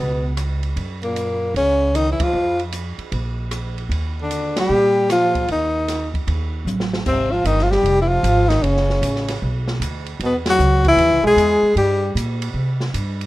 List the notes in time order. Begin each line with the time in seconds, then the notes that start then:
Already playing: C#2 B2 B3
0.37 cross-stick, hi-hat pedal, ride
0.63 ride
0.76 F#2, ride
1.03 A#2 A#3, ride
1.16 hi-hat pedal, ride
1.54 C#2 C#3 C#4, ride
1.95 D#3 D#4, cross-stick, hi-hat pedal, ride
2.10 E3 E4
2.20 F3 F4, muted upright bass stroke, kick, ride
2.33 F2
2.59 ride
2.72 hi-hat pedal, ride
2.98 muted upright bass stroke, ride
3.12 A#1, ride
3.51 cross-stick, hi-hat pedal, ride
3.78 ride
3.89 D#2, ride
4.21 D3 D4
4.31 hi-hat pedal, ride
4.56 G3 G4, snare, ride
4.69 A#2
5.10 F3 F4, cross-stick, snare, hi-hat pedal, ride
5.35 kick, ride
5.48 D#2 D#3 D#4, ride
5.88 snare, hi-hat pedal, ride
6.14 kick, ride
6.27 D#2, ride
6.65 A1, hi-hat pedal, high tom
6.80 snare
6.93 snare
7.06 G#1 C3 C4, kick, crash
7.30 F3 F4
7.44 G1 D#3 D#4, hi-hat pedal, ride
7.59 F3, snare
7.63 F4
7.71 G3 G4, snare
7.83 F1, ride
8.02 E3 E4
8.08 F3 F4
8.23 G#1, hi-hat pedal, ride
8.49 D#3 D#4, snare, ride
8.62 F#1 C#3 C#4, ride
8.77 snare
8.90 snare
9.02 A1, hi-hat pedal, ride
9.16 snare
9.28 snare, ride
9.42 B1
9.68 snare
9.80 D2, hi-hat pedal, ride
10.06 ride
10.20 E2 B2, ride
10.26 B3
10.46 F#3, snare, ride
10.50 F#4
10.59 C#2, hi-hat pedal
10.85 E3 E4, kick, ride
10.97 D#2, ride
11.10 C#2
11.23 B1 G#3 G#4
11.36 E2, hi-hat pedal, ride
11.62 muted upright bass stroke
11.76 G2 G3 G4, ride
12.15 A#2, hi-hat pedal, ride
12.42 ride
12.54 C3
12.80 snare
12.94 G2, hi-hat pedal, ride
13.21 ride